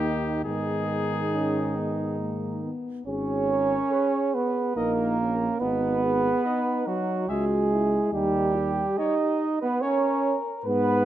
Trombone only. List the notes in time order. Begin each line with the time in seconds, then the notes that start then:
Already playing: D#3
0.45 D#3
3.08 C#4
4.35 B3
4.76 A#3
5.61 B3
6.87 F#3
7.29 G#3
8.13 G3
8.99 D#4
9.62 B3
9.83 C#4
10.66 B3